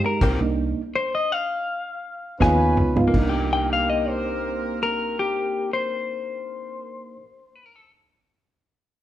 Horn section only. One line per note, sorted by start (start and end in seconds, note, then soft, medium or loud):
0.21 0.37 C4 medium
0.21 0.37 D#4 medium
0.21 0.37 A#4 medium
2.40 3.00 C#4 loud
2.40 3.00 F4 medium
2.40 3.00 B4 loud
3.14 6.82 C4 medium
3.14 6.82 A#4 medium